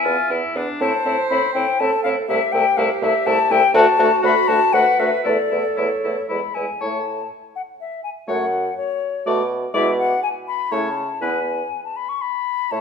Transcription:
0.00 0.53 E5 loud
0.00 0.30 G#5 medium
0.04 0.16 E2 medium
0.04 0.17 B3 medium
0.04 0.32 F4 medium
0.30 0.42 E2 medium
0.30 0.41 B3 medium
0.30 0.58 E4 medium
0.55 0.66 E2 medium
0.55 0.67 B3 medium
0.55 0.81 D4 medium
0.80 0.92 A2 medium
0.80 0.92 C4 medium
0.80 0.93 E4 medium
0.80 1.76 C5 loud
0.80 1.27 A5 medium
1.05 1.17 A2 medium
1.05 1.17 C4 medium
1.05 1.17 E4 medium
1.30 1.42 A2 medium
1.30 1.42 C4 medium
1.30 1.42 E4 medium
1.30 1.54 B5 medium
1.54 1.66 A2 medium
1.54 1.66 C4 medium
1.54 1.66 E4 medium
1.54 1.81 G5 medium
1.80 1.91 A2 medium
1.80 1.91 C4 medium
1.80 1.91 E4 medium
1.80 2.28 A4 medium
1.80 2.03 A5 loud
2.03 2.16 A2 medium
2.03 2.16 C4 medium
2.03 2.16 E4 medium
2.03 2.09 F5 loud
2.28 2.40 C2 medium
2.28 2.40 A3 medium
2.28 2.40 E4 medium
2.28 3.72 G4 medium
2.28 2.54 E5 loud
2.52 2.65 C2 medium
2.52 2.64 A3 medium
2.52 2.65 E4 medium
2.52 2.78 G5 loud
2.77 2.89 C2 medium
2.77 2.88 A3 medium
2.77 2.89 E4 medium
2.77 3.01 F5 loud
3.02 3.13 C2 medium
3.02 3.13 A3 medium
3.02 3.14 E4 medium
3.02 3.28 E5 loud
3.26 3.38 C2 medium
3.26 3.37 A3 medium
3.26 3.38 E4 medium
3.26 3.53 A5 loud
3.50 3.62 C2 medium
3.50 3.61 A3 medium
3.50 3.62 E4 medium
3.50 3.74 G5 loud
3.74 3.86 D2 loud
3.74 3.86 A3 loud
3.74 4.76 F#4 loud
3.74 3.86 F#4 loud
3.74 4.23 A5 loud
3.99 4.10 D2 medium
3.99 4.11 A3 loud
3.99 4.10 F#4 medium
4.23 4.35 D2 loud
4.23 4.35 A3 loud
4.23 4.34 F#4 medium
4.23 4.49 B5 loud
4.48 4.60 D2 medium
4.48 4.60 A3 medium
4.48 4.59 F#4 medium
4.48 4.75 A5 loud
4.73 4.85 D2 medium
4.73 4.85 A3 medium
4.73 4.85 F#4 medium
4.73 5.27 B4 loud
4.73 5.01 F#5 loud
4.99 5.11 D2 medium
4.99 5.11 A3 medium
4.99 5.11 F#4 medium
4.99 5.24 E5 loud
5.24 5.38 E2 medium
5.24 5.37 A3 medium
5.24 5.36 E4 medium
5.24 6.56 A4 medium
5.24 5.78 D5 medium
5.51 5.64 E2 medium
5.51 5.63 A3 medium
5.51 5.63 E4 medium
5.76 5.90 E2 medium
5.76 5.89 A3 medium
5.76 5.88 E4 medium
5.76 6.29 C#5 medium
6.04 6.16 E2 medium
6.04 6.16 A3 medium
6.04 6.15 E4 medium
6.28 6.42 E2 medium
6.28 6.41 G#3 medium
6.28 6.40 E4 medium
6.28 6.56 B5 medium
6.54 6.67 E2 medium
6.54 6.67 G#3 soft
6.54 6.66 E4 soft
6.54 6.82 G#5 medium
6.80 7.23 A2 medium
6.80 6.99 A3 soft
6.80 6.99 E4 soft
6.80 6.98 C#5 medium
6.80 7.28 A5 medium
7.56 7.62 F#5 medium
7.80 8.03 E5 medium
8.04 8.10 G#5 medium
8.28 8.70 F#2 medium
8.28 8.45 A3 medium
8.28 8.45 F#4 medium
8.28 8.45 C#5 medium
8.28 8.77 F#5 medium
8.77 9.25 C#5 medium
9.26 9.67 B2 medium
9.26 9.43 A3 medium
9.26 9.43 F#4 medium
9.26 9.43 D5 medium
9.74 10.15 B2 medium
9.74 9.91 G#3 medium
9.74 9.91 E4 medium
9.74 9.91 D5 medium
9.74 9.97 E5 medium
9.99 10.23 F#5 medium
10.23 10.29 G#5 medium
10.48 10.74 B5 medium
10.72 11.13 C#3 medium
10.72 10.89 A3 medium
10.72 10.89 E4 medium
10.72 10.89 C#5 medium
10.72 11.23 A5 medium
11.21 11.63 E2 medium
11.21 11.40 B3 medium
11.21 11.39 E4 medium
11.21 11.39 B4 medium
11.21 11.84 G#5 medium
11.85 11.98 A5 medium
11.97 12.10 B5 medium
12.09 12.23 C#6 medium
12.21 12.73 B5 medium
12.71 12.81 A2 medium
12.71 12.81 A3 medium
12.71 12.81 E4 medium
12.71 12.81 C#5 medium
12.71 12.81 A5 medium

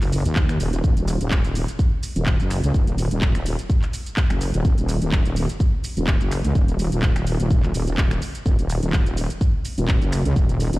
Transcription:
0.01 0.23 F#1 loud
0.01 clap soft
0.01 open hi-hat medium
0.01 shaker soft
0.12 open hi-hat loud
0.12 shaker medium
0.25 0.34 D#2 medium
0.25 closed hi-hat medium
0.25 shaker soft
0.36 0.58 D#2 medium
0.36 kick loud
0.36 clap loud
0.36 shaker soft
0.49 finger snap medium
0.49 closed hi-hat soft
0.49 shaker soft
0.60 0.82 D#1 medium
0.60 open hi-hat loud
0.60 shaker medium
0.73 closed hi-hat medium
0.73 shaker soft
0.84 0.95 D#1 loud
0.84 kick loud
0.84 shaker soft
0.97 1.19 D#1 loud
0.97 closed hi-hat medium
0.97 shaker soft
1.08 open hi-hat loud
1.08 shaker medium
1.21 1.42 D#1 medium
1.21 closed hi-hat medium
1.21 shaker soft
1.31 kick loud
1.31 clap loud
1.31 shaker soft
1.44 1.66 D#1 medium
1.44 closed hi-hat medium
1.44 shaker soft
1.55 open hi-hat loud
1.55 shaker medium
1.68 closed hi-hat medium
1.68 shaker soft
1.79 kick loud
1.79 shaker soft
2.03 open hi-hat loud
2.03 shaker medium
2.16 2.38 D#1 loud
2.16 closed hi-hat medium
2.16 shaker soft
2.26 kick loud
2.26 clap loud
2.26 shaker soft
2.40 2.61 F#1 loud
2.40 closed hi-hat soft
2.40 shaker soft
2.50 finger snap medium
2.50 open hi-hat loud
2.50 shaker medium
2.64 2.73 C#2 loud
2.64 closed hi-hat medium
2.64 shaker soft
2.74 3.09 D#1 medium
2.74 kick loud
2.74 shaker soft
2.87 closed hi-hat medium
2.87 shaker soft
2.98 open hi-hat loud
2.98 shaker medium
3.11 3.33 D#1 medium
3.11 closed hi-hat medium
3.11 shaker soft
3.21 kick loud
3.21 clap loud
3.21 shaker soft
3.35 3.57 D#1 medium
3.35 finger snap medium
3.35 closed hi-hat medium
3.35 shaker soft
3.46 open hi-hat loud
3.46 shaker medium
3.59 closed hi-hat medium
3.59 shaker soft
3.70 kick loud
3.70 shaker soft
3.82 clap soft
3.82 shaker soft
3.93 open hi-hat loud
3.93 shaker medium
4.06 closed hi-hat medium
4.06 shaker soft
4.17 kick loud
4.17 clap loud
4.17 shaker soft
4.30 4.52 F#1 medium
4.30 finger snap medium
4.30 closed hi-hat soft
4.30 shaker soft
4.41 open hi-hat loud
4.41 shaker medium
4.54 4.63 D#1 medium
4.54 closed hi-hat medium
4.54 shaker soft
4.65 4.76 D#1 loud
4.65 kick loud
4.65 shaker soft
4.78 5.00 D#1 loud
4.78 closed hi-hat medium
4.78 shaker soft
4.89 open hi-hat loud
4.89 shaker medium
5.02 5.23 D#1 loud
5.02 closed hi-hat medium
5.02 shaker soft
5.12 kick loud
5.12 clap loud
5.12 shaker soft
5.25 5.47 D#1 loud
5.25 closed hi-hat soft
5.25 shaker soft
5.36 open hi-hat loud
5.36 shaker medium
5.49 closed hi-hat medium
5.49 shaker soft
5.60 kick loud
5.60 shaker soft
5.84 open hi-hat loud
5.84 shaker medium
5.97 6.19 D#1 loud
5.97 closed hi-hat medium
5.97 shaker soft
6.07 kick loud
6.07 clap loud
6.07 shaker soft
6.21 6.42 F#1 medium
6.21 closed hi-hat soft
6.21 shaker soft
6.31 finger snap medium
6.31 open hi-hat loud
6.31 shaker medium
6.45 6.54 C#2 medium
6.45 closed hi-hat medium
6.45 shaker soft
6.55 6.90 D#1 loud
6.55 kick loud
6.55 shaker soft
6.68 closed hi-hat soft
6.68 shaker soft
6.79 open hi-hat loud
6.79 shaker medium
6.92 7.14 D#1 medium
6.92 closed hi-hat medium
6.92 shaker soft
7.02 kick loud
7.02 clap loud
7.02 shaker soft
7.16 7.38 D#1 medium
7.16 finger snap medium
7.16 closed hi-hat medium
7.16 shaker soft
7.27 open hi-hat loud
7.27 shaker medium
7.40 7.61 D#1 loud
7.40 closed hi-hat medium
7.40 shaker soft
7.51 kick loud
7.51 shaker soft
7.63 7.73 D#1 loud
7.63 clap soft
7.63 shaker soft
7.74 8.20 D#1 loud
7.74 open hi-hat loud
7.74 shaker medium
7.87 closed hi-hat medium
7.87 shaker soft
7.98 kick loud
7.98 clap loud
7.98 shaker soft
8.11 finger snap medium
8.11 closed hi-hat soft
8.11 shaker soft
8.22 open hi-hat loud
8.22 shaker medium
8.35 closed hi-hat medium
8.35 shaker soft
8.46 8.57 D#1 loud
8.46 kick loud
8.46 shaker soft
8.59 8.81 D#1 loud
8.59 closed hi-hat medium
8.59 shaker soft
8.70 open hi-hat loud
8.70 shaker medium
8.83 9.04 D#1 loud
8.83 closed hi-hat medium
8.83 shaker soft
8.93 kick loud
8.93 clap loud
8.93 shaker soft
9.06 9.28 D#1 loud
9.06 closed hi-hat medium
9.06 shaker soft
9.17 open hi-hat loud
9.17 shaker medium
9.30 closed hi-hat medium
9.30 shaker soft
9.41 kick loud
9.41 shaker soft
9.65 open hi-hat loud
9.65 shaker medium
9.78 10.00 D#1 loud
9.78 closed hi-hat medium
9.78 shaker soft
9.88 kick loud
9.88 clap loud
9.88 shaker soft
10.02 10.23 F#1 loud
10.02 closed hi-hat soft
10.02 shaker soft
10.12 finger snap medium
10.12 open hi-hat loud
10.12 shaker medium
10.25 10.34 C#2 loud
10.25 closed hi-hat medium
10.25 shaker soft
10.36 10.71 D#1 medium
10.36 kick loud
10.36 shaker medium
10.49 closed hi-hat medium
10.49 shaker soft
10.60 open hi-hat loud
10.60 shaker medium
10.73 10.79 D#1 loud
10.73 closed hi-hat medium
10.73 shaker soft

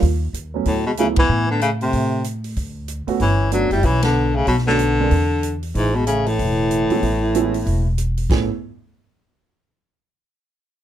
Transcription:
0.02 0.32 D#2 medium
0.02 kick soft
0.02 open hi-hat soft
0.33 0.63 D#2 medium
0.33 closed hi-hat soft
0.54 0.65 F#3 medium
0.54 0.65 A3 medium
0.54 0.66 B3 medium
0.54 0.66 C#4 medium
0.65 1.13 D2 medium
0.65 0.85 A2 medium
0.65 0.84 F#3 medium
0.65 kick soft
0.65 open hi-hat soft
0.86 0.92 B2 medium
0.86 0.92 G#3 medium
0.97 1.07 C#3 medium
0.97 1.16 F#3 medium
0.97 1.08 A3 medium
0.97 1.16 A3 medium
0.97 1.16 B3 medium
0.97 1.16 E4 medium
0.97 closed hi-hat medium
1.16 1.29 C#2 medium
1.16 1.48 E3 loud
1.16 1.47 B3 medium
1.16 kick medium
1.16 ride medium
1.29 1.90 A2 medium
1.50 1.61 D3 medium
1.50 1.61 B3 medium
1.61 1.71 C#3 medium
1.61 1.71 A3 medium
1.61 closed hi-hat soft
1.81 2.23 C3 medium
1.81 2.23 A3 medium
1.81 open hi-hat soft
1.93 2.54 A2 medium
1.93 kick soft
1.93 open hi-hat soft
2.24 closed hi-hat medium
2.44 open hi-hat soft
2.56 3.04 D2 medium
2.56 kick soft
2.56 open hi-hat soft
2.88 closed hi-hat medium
3.07 3.19 A3 medium
3.07 3.19 B3 medium
3.07 3.19 C#4 medium
3.07 3.20 F#4 medium
3.07 muted upright bass stroke soft
3.07 open hi-hat soft
3.20 3.68 G1 medium
3.20 3.51 E3 medium
3.20 3.50 C#4 medium
3.20 kick soft
3.20 open hi-hat soft
3.52 3.71 F#3 medium
3.52 3.69 A3 medium
3.52 3.70 B3 medium
3.52 3.70 C#4 medium
3.52 3.70 D4 medium
3.52 3.70 F#4 medium
3.52 closed hi-hat medium
3.71 3.83 F#1 medium
3.71 3.87 G3 medium
3.71 3.85 E4 medium
3.71 open hi-hat soft
3.83 4.44 B1 medium
3.83 4.03 E3 loud
3.83 4.03 C#4 medium
3.83 kick soft
3.83 open hi-hat soft
4.02 4.37 D3 medium
4.02 4.36 B3 medium
4.02 snare medium
4.02 ride medium
4.34 4.47 C#3 medium
4.34 4.46 A3 medium
4.47 5.08 B1 medium
4.47 4.56 B2 medium
4.47 4.56 F#3 medium
4.47 kick soft
4.47 open hi-hat soft
4.58 snare soft
4.66 5.59 D3 medium
4.66 4.79 A3 medium
4.66 5.08 B3 medium
4.66 4.79 C#4 medium
4.66 4.79 D4 medium
4.66 4.79 F#4 medium
4.66 snare soft
4.79 closed hi-hat soft
5.00 5.10 G#3 medium
5.00 5.11 C4 medium
5.00 5.11 D4 medium
5.00 5.11 A#4 medium
5.11 5.72 E2 medium
5.11 kick soft
5.11 open hi-hat soft
5.43 closed hi-hat soft
5.63 open hi-hat soft
5.75 6.35 A1 medium
5.75 5.97 G#2 medium
5.75 5.97 E3 medium
5.75 kick soft
5.75 open hi-hat soft
5.95 6.06 B2 medium
5.95 6.07 G#3 medium
6.07 6.29 C#3 medium
6.07 6.30 A3 medium
6.07 closed hi-hat medium
6.26 7.98 A2 medium
6.26 7.99 E3 medium
6.26 open hi-hat soft
6.39 6.86 E1 medium
6.39 kick soft
6.39 open hi-hat soft
6.71 closed hi-hat soft
6.90 7.01 G#3 medium
6.90 7.01 B3 medium
6.90 7.02 C#4 medium
6.90 7.02 E4 medium
6.90 muted upright bass stroke soft
6.90 open hi-hat soft
7.02 7.63 A1 medium
7.02 kick soft
7.02 open hi-hat soft
7.34 7.52 G#3 medium
7.34 7.52 B3 medium
7.34 7.52 C#4 medium
7.34 7.52 E4 medium
7.34 closed hi-hat medium
7.54 open hi-hat soft
7.66 8.26 E1 medium
7.66 kick soft
7.66 open hi-hat soft
7.98 closed hi-hat medium
8.17 open hi-hat soft
8.29 8.48 A1 medium
8.29 8.48 A3 medium
8.29 8.48 B3 medium
8.29 8.48 C#4 medium
8.29 8.48 E4 medium
8.29 8.48 G#4 medium
8.29 kick medium
8.29 snare medium
8.29 crash medium

